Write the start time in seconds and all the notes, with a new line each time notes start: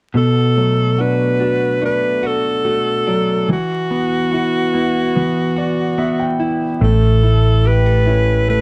0.14 B2 A4
0.56 F#3 A3
0.98 D4 F#4 B4
1.40 D4 F#4
1.81 A3 D4 B4
2.23 F#4 A4
2.65 A3 F#4
3.07 F#3 D4
3.48 E3 F#4
3.91 B3
4.32 E4 F#4
4.74 B3 E4
5.15 E3 B3
5.57 F#4 D5
5.98 B3 E5
6.19 G5
6.39 E4
6.81 A1 A2 A3 A4
7.23 A3 E4
7.65 G4 B4
7.86 A4
8.06 C#4 E4
8.48 A3 B4